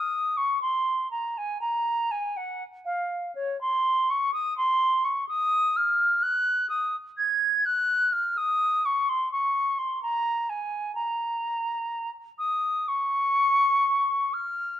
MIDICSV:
0, 0, Header, 1, 2, 480
1, 0, Start_track
1, 0, Tempo, 974026
1, 1648, Time_signature, 4, 2, 24, 8
1, 2127, Tempo, 949367
1, 5487, Tempo, 961538
1, 7402, End_track
2, 0, Start_track
2, 0, Title_t, "Flute"
2, 0, Program_c, 0, 73
2, 0, Note_on_c, 0, 87, 65
2, 181, Note_on_c, 0, 85, 71
2, 189, Note_off_c, 0, 87, 0
2, 300, Note_off_c, 0, 85, 0
2, 303, Note_on_c, 0, 84, 70
2, 543, Note_off_c, 0, 84, 0
2, 546, Note_on_c, 0, 82, 65
2, 677, Note_on_c, 0, 80, 67
2, 684, Note_off_c, 0, 82, 0
2, 791, Note_off_c, 0, 80, 0
2, 794, Note_on_c, 0, 82, 69
2, 1039, Note_on_c, 0, 80, 70
2, 1047, Note_off_c, 0, 82, 0
2, 1166, Note_on_c, 0, 78, 71
2, 1173, Note_off_c, 0, 80, 0
2, 1297, Note_off_c, 0, 78, 0
2, 1405, Note_on_c, 0, 77, 63
2, 1644, Note_off_c, 0, 77, 0
2, 1650, Note_on_c, 0, 73, 72
2, 1770, Note_off_c, 0, 73, 0
2, 1777, Note_on_c, 0, 84, 71
2, 2020, Note_on_c, 0, 85, 61
2, 2027, Note_off_c, 0, 84, 0
2, 2133, Note_off_c, 0, 85, 0
2, 2137, Note_on_c, 0, 87, 71
2, 2250, Note_off_c, 0, 87, 0
2, 2257, Note_on_c, 0, 84, 76
2, 2494, Note_on_c, 0, 85, 60
2, 2502, Note_off_c, 0, 84, 0
2, 2610, Note_off_c, 0, 85, 0
2, 2616, Note_on_c, 0, 87, 79
2, 2858, Note_on_c, 0, 89, 70
2, 2866, Note_off_c, 0, 87, 0
2, 3091, Note_on_c, 0, 90, 76
2, 3099, Note_off_c, 0, 89, 0
2, 3325, Note_off_c, 0, 90, 0
2, 3328, Note_on_c, 0, 87, 67
2, 3462, Note_off_c, 0, 87, 0
2, 3571, Note_on_c, 0, 92, 73
2, 3814, Note_on_c, 0, 90, 74
2, 3821, Note_off_c, 0, 92, 0
2, 4051, Note_on_c, 0, 89, 71
2, 4059, Note_off_c, 0, 90, 0
2, 4177, Note_on_c, 0, 87, 78
2, 4185, Note_off_c, 0, 89, 0
2, 4420, Note_on_c, 0, 85, 67
2, 4427, Note_off_c, 0, 87, 0
2, 4539, Note_on_c, 0, 84, 74
2, 4547, Note_off_c, 0, 85, 0
2, 4652, Note_off_c, 0, 84, 0
2, 4655, Note_on_c, 0, 85, 67
2, 4891, Note_on_c, 0, 84, 62
2, 4899, Note_off_c, 0, 85, 0
2, 5010, Note_off_c, 0, 84, 0
2, 5013, Note_on_c, 0, 82, 74
2, 5249, Note_on_c, 0, 80, 66
2, 5257, Note_off_c, 0, 82, 0
2, 5477, Note_off_c, 0, 80, 0
2, 5480, Note_on_c, 0, 82, 76
2, 6057, Note_off_c, 0, 82, 0
2, 6197, Note_on_c, 0, 87, 70
2, 6444, Note_on_c, 0, 85, 75
2, 6451, Note_off_c, 0, 87, 0
2, 7170, Note_on_c, 0, 89, 73
2, 7177, Note_off_c, 0, 85, 0
2, 7402, Note_off_c, 0, 89, 0
2, 7402, End_track
0, 0, End_of_file